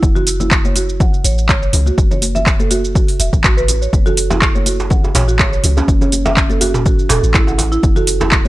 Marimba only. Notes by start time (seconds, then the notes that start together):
0.15 F#4
0.40 E4
0.64 C#5
0.76 F#4
1.00 F#5
1.25 C#5
1.49 C#5
1.62 C#5
1.86 F#4
2.11 C#5
2.35 E5
2.59 A4
2.71 F#4
2.95 F#4
3.20 E5
3.44 F#4
3.57 B4
3.82 C#5
4.06 F#4
4.30 E4
4.55 C#5
4.66 F#4
4.91 F#5
5.15 C#5
5.28 F#4
5.39 C#5
5.52 C#5
6.01 C#5
6.26 E5
6.50 A4
6.61 F#4
6.86 F#4
7.10 A4
7.34 E4
7.48 F#5
7.72 E4
7.96 F#4
8.21 E4
8.45 C#5